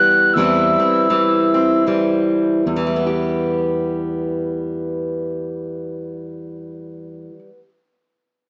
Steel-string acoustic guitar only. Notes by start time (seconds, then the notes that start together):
Already playing: E2 E3 G3 B3 G4
0.36 E2 E3 G3 C4 E4
0.80 C4
1.10 E3 G3
1.54 C4
1.87 E3 G3
2.67 E2
2.76 E3
2.87 G3
2.96 B3
3.07 G4